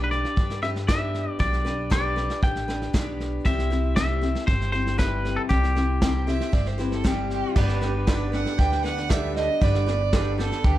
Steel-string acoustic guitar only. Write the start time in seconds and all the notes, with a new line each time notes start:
Already playing: B3 D4 G4
0.11 D4 G4 B4
0.36 B3 D4 G4 B4
0.62 D4 G4 B4
0.88 B3 D4 G4 B4
1.39 B3 D4 G4 B4
1.65 D4 G4 B4
1.90 B3 D4 G4 B4
2.16 D4 G4 B4
2.42 B3 D4 G4 B4
2.68 D4 G4 B4
2.93 B3 D4 G4 B4
3.45 C3 G3 C4 E4 G4 C5
3.70 C4 E4 G4 C5
3.96 C3 G3 C4 E4 G4 C5
4.21 C4 E4 G4 C5
4.47 C4 E4 G4 C5
4.72 C4 E4 G4 C5
4.98 C3 G3 C4 E4 G4
5.49 C3 G3 C4 E4 G4 C5
5.75 C4 E4 G4 C5
6.02 C3 G3 C4 E4 G4 C5
6.27 C4 E4 G4 C5
6.52 C4 E4 G4 C5
6.78 C4 E4 G4 C5
7.04 C3 G3 C4 E4 G4 C5
7.56 G3 B3 D4 B4
7.82 B3 D4 B4
8.07 G3 B3 D4 B4
8.32 B3 D4 B4
8.58 G3 B3 D4 B4
8.84 B3 D4 B4
9.09 G3 B3 D4 B4
9.61 G3 B3 D4 B4
9.86 B3 D4 B4
10.13 G3 B3 D4 B4
10.38 B3 D4 B4
10.64 G3 B3 D4 B4